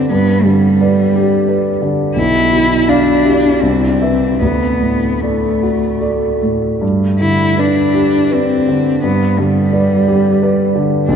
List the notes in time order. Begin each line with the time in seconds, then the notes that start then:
Already playing: D3 C4 G4 B4 D5
0.10 G2 B3
0.45 D3 G3
0.81 B4 D5
1.16 G4
1.49 B4 D5
1.82 D3
2.16 B1 E4
2.52 B2
2.89 D4 D5 F5
3.25 G4
3.62 C2 C4
4.02 B4 E5
4.41 D2 B3
4.81 A2
5.21 A3 A4 D5
5.63 F#4
6.01 A4 D5
6.42 A2
6.82 G2
7.19 D3 E4
7.57 D4 B4 D5
7.94 G4
8.31 C4 B4 D5
8.68 D3
9.03 G2 B3
9.38 D3 G3
9.73 B4 D5
10.08 G4
10.43 B4 D5
10.76 D3
11.08 B1 D4